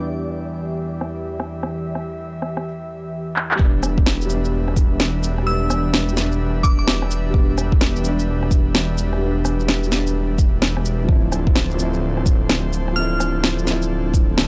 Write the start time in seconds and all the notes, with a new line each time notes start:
Already playing: E2 E3 G3 B3 D4 G4 D5 E5
1.01 cross-stick
1.40 cross-stick
1.63 cross-stick
1.95 cross-stick
2.42 cross-stick
2.57 cross-stick
3.36 clap
3.51 clap
3.56 E1 G3 D4 G4 B4 E5, kick
3.60 B3 D4
3.83 cross-stick, cabasa, shaker
3.98 kick
4.06 snare
4.21 shaker
4.26 G3, cabasa, shaker
4.30 B3
4.34 D4
4.45 shaker
4.68 cross-stick
4.76 kick, cabasa, shaker
5.00 snare
5.23 cabasa, shaker
5.38 cross-stick
5.43 G3 B3 E6
5.51 D4
5.70 cross-stick, cabasa, shaker
5.94 snare
6.09 shaker
6.13 G3
6.17 B3 D4, snare, cabasa, shaker
6.32 shaker
6.63 D6, kick, cabasa, shaker
6.79 D6
6.88 cross-stick, snare
7.02 cross-stick
7.11 cabasa, shaker
7.30 G3 B3, kick
7.38 D4
7.58 cross-stick, cabasa, shaker
7.72 kick
7.81 snare
7.96 shaker
8.00 G3
8.04 B3 D4, cabasa, shaker
8.19 shaker
8.43 cross-stick
8.51 kick, cabasa, shaker
8.75 snare
8.98 cabasa, shaker
9.13 cross-stick
9.18 G3 B3
9.26 D4
9.45 cross-stick, cabasa, shaker
9.60 shaker
9.68 snare
9.83 G3, shaker
9.91 B3, snare, cabasa, shaker
9.95 D4
10.07 shaker
10.38 kick, cabasa, shaker
10.62 cross-stick, snare
10.77 cross-stick
10.85 cabasa, shaker
11.05 F3 D4 A4 C5
11.09 D1 C4 E4, kick
11.32 cross-stick, cabasa, shaker
11.47 kick
11.56 snare
11.71 shaker
11.75 F3 C4
11.79 E4, cabasa, shaker
11.94 shaker
12.17 cross-stick
12.26 kick, cabasa, shaker
12.49 snare
12.73 cabasa, shaker
12.88 cross-stick
12.92 F3 F6
12.96 C4
13.00 E4
13.20 cross-stick, cabasa, shaker
13.44 snare
13.59 shaker
13.63 F3, snare, cabasa, shaker
13.67 C4 E4
13.82 shaker
14.14 kick, cabasa, shaker
14.38 cross-stick, snare